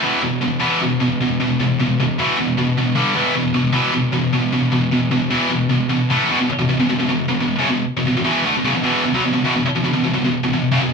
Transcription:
X:1
M:4/4
L:1/16
Q:1/4=153
K:G
V:1 name="Distorted electric guitar" clef=bass
[E,,B,,E,]2 [E,,B,,]2 [E,,B,,]2 [E,,B,,E,]2 [E,,B,,]2 [E,,B,,]2 [E,,B,,]2 [E,,B,,]2 | [E,,B,,]2 [E,,B,,]2 [E,,B,,]2 [E,,B,,E,]2 [E,,B,,]2 [E,,B,,]2 [E,,B,,]2 [G,,D,G,]2 | [E,,B,,E,]2 [E,,B,,]2 [E,,B,,]2 [E,,B,,E,]2 [E,,B,,]2 [E,,B,,]2 [E,,B,,]2 [E,,B,,]2 | [E,,B,,]2 [E,,B,,]2 [E,,B,,]2 [E,,B,,E,]2 [E,,B,,]2 [E,,B,,]2 [E,,B,,]2 [A,,E,A,]2 |
[E,,B,,] [E,,B,,] z [E,,B,,] [E,,B,,] [E,,B,,] [E,,B,,] [E,,B,,] [E,,B,,]2 [E,,B,,] [E,,B,,]2 [F,,^C,] [E,,B,,]2 | z [E,,B,,] [E,,B,,] [E,,B,,] [E,,B,,E,]2 [D,A,] [E,,B,,] [F,,^C,] [E,,B,,] [E,,B,,E,]2 [E,,B,,] [B,,F,] [E,,B,,] [E,,B,,] | [E,,B,,] [E,,B,,] z [E,,B,,] [E,,B,,] [E,,B,,] [E,,B,,] [E,,B,,] [E,,B,,]2 [E,,B,,] [E,,B,,]2 [F,,^C,] [E,,B,,]2 |]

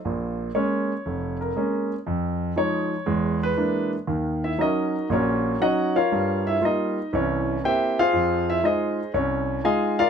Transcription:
X:1
M:4/4
L:1/8
Q:"Swing" 1/4=119
K:Bbm
V:1 name="Grand piano"
z2 d3 B2 z | z2 d3 =B2 z | z [=E=e] [_EGB_e]2 [DGBd]2 [Gdeg] [FBdf]- | [FBdf] [=E=e] [_E_e]2 [Dd]2 [=Gc=e=g] [FAcf]- |
[FAcf] [=E=e] [Ac_e]2 [Dd]2 [Aefa] [FB=df] |]
V:2 name="Grand piano" clef=bass
[B,,,B,,]2 [A,B,D] z F,,,2 [A,B,D] z | F,,2 [F,A,E] z [=E,,^G,]2 [=E,G,^A,=D] z | [E,,E,]2 [G,DE] z [B,,,B,,]2 [G,DE] z | [=G,,=G,]2 [G,B,F] z [C,,=E,]2 [B,C=E] z |
[F,,F,]2 [A,EF] z C,,2 [A,EF] z |]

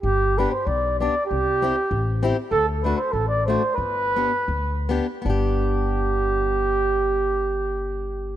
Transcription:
X:1
M:2/4
L:1/16
Q:"Swing" 1/4=90
K:G
V:1 name="Flugelhorn"
G2 B c d2 d2 | G6 z2 | A2 B c A d c2 | B6 z2 |
G8- | G8 |]
V:2 name="Steel-string acoustic guitar"
z2 [B,DG]2 z2 [B,DG]2 | z2 [CEG]2 z2 [CEG]2 | z2 [A,DF]2 z2 [A,DF]2 | z2 [B,DG]2 z2 [B,DG]2 |
[B,DG]8- | [B,DG]8 |]
V:3 name="Upright bass" clef=bass
G,,,4 B,,,4 | C,,4 A,,,4 | D,,4 A,,,4 | G,,,4 D,,4 |
G,,,8- | G,,,8 |]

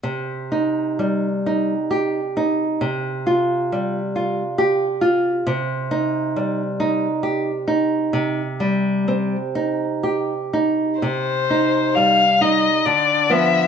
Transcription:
X:1
M:3/4
L:1/8
Q:1/4=67
K:Cm
V:1 name="Violin"
z6 | z6 | z6 | z6 |
c2 f e d =e |]
V:2 name="Nylon-string guitar"
C, E G, E G E | C, F G, F G F | C, E G, E G E | C, G, C E G E |
C, E G, E D, [F,=B,] |]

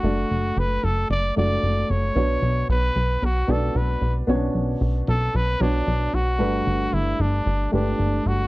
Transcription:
X:1
M:4/4
L:1/16
Q:1/4=113
K:Bm
V:1 name="Trumpet"
F4 B2 A2 d2 d4 c2- | c4 B4 F2 A2 B3 z | z6 A2 B2 D4 F2- | F4 E2 D4 D4 F2 |]
V:2 name="Upright piano"
[A,DFd]8 z2 [A,DFd]6 | [B,DFc]8 z2 [B,DFd]6 | [B,CDFc]8 z2 [B,DFc]6 | [G,A,DB]8 z2 [A,DGB]6 |]
V:3 name="Upright piano" clef=bass
z16 | B,,6 z8 z2 | B,,6 z8 z2 | G,,6 z8 z2 |]
V:4 name="Analog synth bass" clef=bass
F,,,2 F,,,2 F,,,2 F,,,2 F,,,2 F,,,2 F,,,2 F,,,2 | B,,,2 B,,,2 B,,,2 B,,,2 B,,,2 B,,,2 B,,,2 B,,,2 | B,,,2 B,,,2 B,,,2 B,,,2 B,,,2 B,,,2 B,,,2 B,,,2 | G,,,2 G,,,2 G,,,2 G,,,2 G,,,2 G,,,2 G,,,2 G,,,2 |]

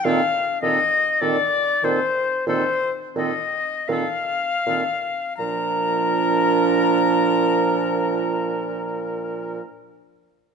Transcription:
X:1
M:4/4
L:1/8
Q:1/4=46
K:Bb
V:1 name="Flute"
f e d c c e f2 | b8 |]
V:2 name="Oboe"
A A A A A A A A | B8 |]
V:3 name="Clarinet"
C C C C C C C C | D8 |]
V:4 name="French horn" clef=bass
E, E, E, E, E, E, E, E, | F,8 |]
V:5 name="Bassoon" clef=bass
B,, B,, B,, B,, B,, B,, B,, B,, | B,,8 |]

